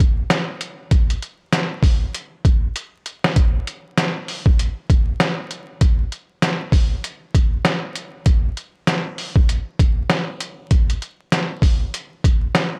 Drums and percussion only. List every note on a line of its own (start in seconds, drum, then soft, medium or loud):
0.00 kick medium
0.00 closed hi-hat medium
0.30 snare loud
0.30 closed hi-hat medium
0.61 closed hi-hat medium
0.91 kick loud
0.91 closed hi-hat medium
1.10 closed hi-hat medium
1.22 closed hi-hat medium
1.53 snare loud
1.53 closed hi-hat loud
1.83 kick loud
1.83 open hi-hat medium
2.14 closed hi-hat medium
2.45 kick medium
2.45 closed hi-hat medium
2.76 closed hi-hat medium
3.06 closed hi-hat medium
3.24 snare medium
3.36 kick loud
3.36 closed hi-hat medium
3.67 closed hi-hat medium
3.97 snare loud
3.97 closed hi-hat loud
4.28 open hi-hat medium
4.46 kick loud
4.59 closed hi-hat loud
4.90 kick medium
4.90 closed hi-hat medium
5.20 snare loud
5.20 closed hi-hat medium
5.51 closed hi-hat medium
5.81 kick loud
5.81 closed hi-hat medium
6.12 closed hi-hat medium
6.42 snare loud
6.42 closed hi-hat loud
6.72 kick medium
6.72 open hi-hat medium
7.04 closed hi-hat loud
7.34 kick medium
7.34 closed hi-hat medium
7.65 snare loud
7.65 closed hi-hat medium
7.96 closed hi-hat medium
8.26 kick loud
8.26 closed hi-hat medium
8.57 closed hi-hat medium
8.87 snare loud
8.87 closed hi-hat loud
9.18 open hi-hat medium
9.36 kick loud
9.49 closed hi-hat loud
9.79 kick medium
9.79 closed hi-hat medium
10.10 snare loud
10.10 closed hi-hat medium
10.41 closed hi-hat medium
10.71 kick loud
10.71 closed hi-hat medium
10.90 closed hi-hat medium
11.02 closed hi-hat medium
11.32 snare loud
11.32 closed hi-hat loud
11.62 kick medium
11.62 open hi-hat medium
11.94 closed hi-hat loud
12.24 kick medium
12.24 closed hi-hat medium
12.55 snare loud
12.55 closed hi-hat medium